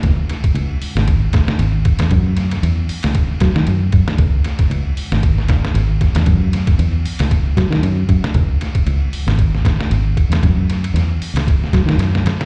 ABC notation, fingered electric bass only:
X:1
M:4/4
L:1/16
Q:"Swing 16ths" 1/4=115
K:C#m
V:1 name="Fingered electric bass" clef=bass
C,,2 z2 C,,2 z G,,,4- G,,, G,,,3 E,, | F,,4 E,,2 z C,,3 F, D, F,,2 F,, z | C,,2 z2 C,,2 z G,,,4- G,,, G,,,3 E,, | F,,4 E,,2 z C,,3 F, D, F,,2 F,, z |
C,,2 z2 C,,2 z G,,,4- G,,, G,,,3 E,, | F,,4 E,,2 z C,,3 F, D, F,,2 F,, z |]